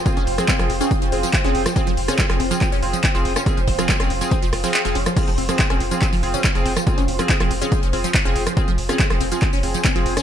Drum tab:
CC |----------------|----------------|----------------|x---------------|
HH |xxoxxxoxxxoxxxox|xxoxxxoxxooxxxox|xxoxxxoxxxooxxox|xxoxxxoxxooxxxox|
TB |xx-xxx-xxx-xxx-x|xx-xxx-xxx-xxx-x|xx-xxx-xxx-xxx-x|xx-xxx-xxx-xxx-x|
CP |----x-------x---|----x---x---x---|----x-------x---|----x---x---x---|
SD |---r-r---------r|---r-r---------r|---r-r----r----r|---r-r---------r|
BD |o---o---o---o---|o---o---o---o---|o-o-o---o-------|o---o---o---o---|

CC |----------------|----------------|
HH |xxoxxxoxxxoxxxox|xxoxxxoxxooxxxox|
TB |xx-xxx-xxx-xxx-x|xx-xxx-xxx-xxx-x|
CP |----x-------x---|----x---x---x---|
SD |---r-r---------r|---r-r---------r|
BD |o---o---o---o---|o---o---o---o---|